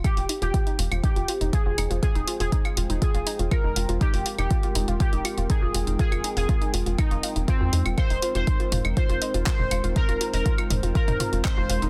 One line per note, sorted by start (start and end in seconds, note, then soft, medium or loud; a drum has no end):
0.04 7.94 G#3 medium
0.04 11.90 C4 medium
0.04 0.12 F4 medium
0.04 7.94 F4 medium
0.04 0.33 G4 loud
0.04 3.97 C5 medium
0.04 7.94 G5 medium
0.04 kick loud
0.04 closed hi-hat soft
0.04 claves soft
0.17 0.27 F1 medium
0.17 0.25 F4 medium
0.17 open hi-hat medium
0.29 0.41 D#4 medium
0.29 open hi-hat loud
0.42 0.51 F1 medium
0.42 0.50 F4 medium
0.42 0.71 G4 medium
0.42 closed hi-hat soft
0.54 0.62 F4 medium
0.54 kick loud
0.54 closed hi-hat soft
0.67 0.78 D#4 medium
0.67 closed hi-hat soft
0.79 0.89 F1 medium
0.79 0.87 F4 medium
0.79 open hi-hat loud
0.91 1.01 F1 medium
0.91 0.99 F4 medium
0.91 closed hi-hat soft
0.91 claves soft
1.04 1.16 D#4 medium
1.04 1.43 G4 medium
1.04 kick loud
1.04 closed hi-hat soft
1.16 1.26 F1 medium
1.16 1.24 F4 medium
1.16 closed hi-hat soft
1.28 1.36 F4 medium
1.28 open hi-hat loud
1.41 1.51 F1 medium
1.41 1.52 D#4 medium
1.41 closed hi-hat soft
1.53 1.61 F4 medium
1.53 1.92 G#4 loud
1.53 kick loud
1.53 closed hi-hat soft
1.66 1.75 F1 medium
1.66 1.74 F4 medium
1.78 1.88 F1 medium
1.78 1.90 D#4 medium
1.78 open hi-hat loud
1.78 claves soft
1.90 2.00 F1 medium
1.90 1.98 F4 medium
1.90 closed hi-hat soft
2.03 2.11 F4 medium
2.03 2.32 G#4 loud
2.03 kick loud
2.03 closed hi-hat soft
2.15 2.25 F1 medium
2.15 2.27 D#4 medium
2.15 closed hi-hat soft
2.28 2.36 F4 medium
2.28 open hi-hat loud
2.40 2.50 F1 medium
2.40 2.48 F4 medium
2.40 2.69 G#4 loud
2.40 open hi-hat medium
2.52 2.64 D#4 medium
2.52 kick loud
2.52 closed hi-hat soft
2.65 2.73 F4 medium
2.65 closed hi-hat soft
2.65 claves soft
2.77 2.87 F1 medium
2.77 2.85 F4 medium
2.77 open hi-hat loud
2.90 2.99 F1 medium
2.90 3.01 D#4 medium
2.90 closed hi-hat soft
3.02 3.10 F4 medium
3.02 3.41 G#4 medium
3.02 kick loud
3.02 closed hi-hat soft
3.14 3.24 F1 medium
3.14 3.22 F4 medium
3.14 closed hi-hat soft
3.27 3.39 D#4 medium
3.27 open hi-hat loud
3.39 3.49 F1 medium
3.39 3.47 F4 medium
3.39 closed hi-hat soft
3.51 3.60 F4 medium
3.51 3.91 A#4 medium
3.51 kick loud
3.51 closed hi-hat soft
3.51 claves soft
3.64 3.74 F1 medium
3.64 3.76 D#4 medium
3.76 3.86 F1 medium
3.76 3.84 F4 medium
3.76 open hi-hat loud
3.89 3.98 F1 medium
3.89 3.97 F4 medium
3.89 closed hi-hat soft
4.01 4.13 D#4 medium
4.01 4.30 G4 loud
4.01 7.94 A#4 medium
4.01 kick loud
4.01 closed hi-hat soft
4.14 4.23 F1 medium
4.14 4.21 F4 medium
4.14 open hi-hat medium
4.26 4.34 F4 medium
4.26 open hi-hat loud
4.38 4.48 F1 medium
4.38 4.50 D#4 medium
4.38 4.67 G4 medium
4.38 closed hi-hat soft
4.38 claves soft
4.51 4.59 F4 medium
4.51 kick loud
4.51 closed hi-hat soft
4.63 4.71 F4 medium
4.63 closed hi-hat soft
4.75 4.85 F1 medium
4.75 4.87 D#4 medium
4.75 open hi-hat loud
4.88 4.98 F1 medium
4.88 4.96 F4 medium
4.88 closed hi-hat soft
5.00 5.08 F4 medium
5.00 5.39 G4 medium
5.00 kick loud
5.00 closed hi-hat soft
5.13 5.22 F1 medium
5.13 5.24 D#4 medium
5.13 closed hi-hat soft
5.25 5.33 F4 medium
5.25 open hi-hat loud
5.25 claves soft
5.38 5.47 F1 medium
5.38 5.45 F4 medium
5.38 closed hi-hat soft
5.50 5.62 D#4 medium
5.50 5.89 G#4 loud
5.50 kick loud
5.50 closed hi-hat soft
5.62 5.72 F1 medium
5.62 5.70 F4 medium
5.74 5.85 F1 medium
5.74 5.83 F4 medium
5.74 open hi-hat loud
5.87 5.97 F1 medium
5.87 5.99 D#4 medium
5.87 closed hi-hat soft
5.99 6.07 F4 medium
5.99 6.29 G#4 loud
5.99 kick loud
5.99 closed hi-hat soft
6.12 6.22 F1 medium
6.12 6.20 F4 medium
6.12 closed hi-hat soft
6.12 claves medium
6.24 6.36 D#4 medium
6.24 open hi-hat loud
6.37 6.46 F1 medium
6.37 6.44 F4 medium
6.37 6.66 G#4 medium
6.37 open hi-hat medium
6.49 6.57 F4 medium
6.49 kick loud
6.49 closed hi-hat soft
6.61 6.73 D#4 medium
6.61 closed hi-hat soft
6.74 6.84 F1 medium
6.74 6.82 F4 medium
6.74 open hi-hat loud
6.86 6.96 F1 medium
6.86 6.94 F4 medium
6.86 closed hi-hat soft
6.98 7.11 D#4 medium
6.98 7.38 D#4 loud
6.98 kick loud
6.98 closed hi-hat soft
6.98 claves medium
7.11 7.21 F1 medium
7.11 7.19 F4 medium
7.11 closed hi-hat soft
7.23 7.31 F4 medium
7.23 open hi-hat loud
7.36 7.46 F1 medium
7.36 7.47 D#4 medium
7.36 closed hi-hat soft
7.48 7.87 C4 loud
7.48 7.56 F4 medium
7.48 kick loud
7.48 closed hi-hat soft
7.61 7.70 F2 medium
7.61 7.68 F4 medium
7.73 7.83 F2 medium
7.73 7.85 D#4 medium
7.73 open hi-hat loud
7.86 7.95 F1 medium
7.86 7.93 F4 medium
7.86 closed hi-hat soft
7.86 claves soft
7.98 11.90 G#3 medium
7.98 11.90 D#4 medium
7.98 8.06 F4 medium
7.98 11.90 A#4 medium
7.98 8.27 C5 loud
7.98 11.90 C5 medium
7.98 kick loud
7.98 closed hi-hat soft
7.98 claves medium
8.10 8.20 F1 medium
8.10 8.22 D#4 medium
8.10 open hi-hat medium
8.22 8.31 F4 medium
8.22 open hi-hat loud
8.35 8.45 F1 medium
8.35 8.43 F4 medium
8.35 8.64 C5 loud
8.35 closed hi-hat soft
8.47 8.59 D#4 medium
8.47 kick loud
8.47 closed hi-hat soft
8.60 8.68 F4 medium
8.60 closed hi-hat soft
8.72 8.82 F1 medium
8.72 8.80 F4 medium
8.72 mid tom medium
8.72 open hi-hat loud
8.85 8.94 F1 medium
8.85 8.96 D#4 medium
8.85 closed hi-hat soft
8.85 claves medium
8.97 9.05 F4 medium
8.97 9.36 C5 medium
8.97 kick loud
8.97 closed hi-hat soft
9.09 9.19 F1 medium
9.09 9.17 F4 medium
9.09 closed hi-hat soft
9.22 9.34 D#4 medium
9.22 open hi-hat loud
9.34 9.44 F1 medium
9.34 9.42 F4 medium
9.34 closed hi-hat soft
9.46 9.55 F4 medium
9.46 9.85 C5 loud
9.46 kick loud
9.46 clap loud
9.46 closed hi-hat soft
9.59 9.69 F1 medium
9.59 9.71 D#4 medium
9.59 mid tom medium
9.71 9.81 F1 medium
9.71 9.79 F4 medium
9.71 open hi-hat loud
9.71 claves medium
9.84 9.93 F1 medium
9.84 9.92 F4 medium
9.84 closed hi-hat soft
9.96 10.08 D#4 medium
9.96 10.25 A#4 loud
9.96 kick loud
9.96 closed hi-hat soft
10.09 10.18 F1 medium
10.09 10.16 F4 medium
10.09 closed hi-hat soft
10.21 10.29 F4 medium
10.21 open hi-hat loud
10.33 10.43 F1 medium
10.33 10.45 D#4 medium
10.33 10.63 A#4 medium
10.33 open hi-hat medium
10.46 10.54 F4 medium
10.46 kick loud
10.46 closed hi-hat soft
10.58 10.66 F4 medium
10.58 closed hi-hat soft
10.58 claves medium
10.70 10.80 F1 medium
10.70 10.82 D#4 medium
10.70 mid tom medium
10.70 open hi-hat loud
10.83 10.93 F1 medium
10.83 10.91 F4 medium
10.83 closed hi-hat soft
10.95 11.03 F4 medium
10.95 11.34 A#4 loud
10.95 kick loud
10.95 closed hi-hat soft
11.08 11.18 F1 medium
11.08 11.19 D#4 medium
11.08 closed hi-hat soft
11.08 mid tom loud
11.20 11.28 F4 medium
11.20 mid tom medium
11.20 open hi-hat loud
11.33 11.42 F1 medium
11.33 11.40 F4 medium
11.33 closed hi-hat soft
11.45 11.57 D#4 medium
11.45 11.84 C5 medium
11.45 kick loud
11.45 clap loud
11.45 closed hi-hat soft
11.45 claves medium
11.57 11.67 F1 medium
11.57 11.65 F4 medium
11.70 11.80 F1 loud
11.70 11.78 F4 medium
11.70 open hi-hat loud
11.82 11.90 F1 medium
11.82 11.90 D#4 medium
11.82 closed hi-hat soft